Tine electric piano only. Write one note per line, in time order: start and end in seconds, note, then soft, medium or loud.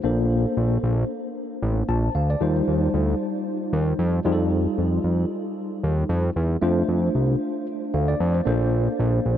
0.04 2.11 A#3 medium
0.04 2.11 D4 medium
0.04 2.11 A4 medium
0.04 2.11 C5 medium
1.89 2.14 A5 medium
2.15 2.29 F5 medium
2.30 2.55 D5 medium
2.41 4.22 G3 medium
2.41 4.22 D#4 medium
2.41 4.22 F4 medium
2.41 4.22 C5 medium
4.24 6.32 G3 medium
4.24 6.32 D#4 medium
4.24 6.32 F4 medium
4.24 4.33 G#4 medium
4.32 6.35 A4 medium
6.61 8.42 A3 medium
6.61 8.43 D4 medium
6.61 8.43 F4 medium
6.61 7.66 C5 medium
7.94 8.08 F5 medium
8.08 8.33 D5 medium
8.35 8.46 C5 medium
8.45 9.38 A#3 medium
8.45 9.38 D4 medium
8.45 9.38 A4 medium
8.45 9.38 C5 medium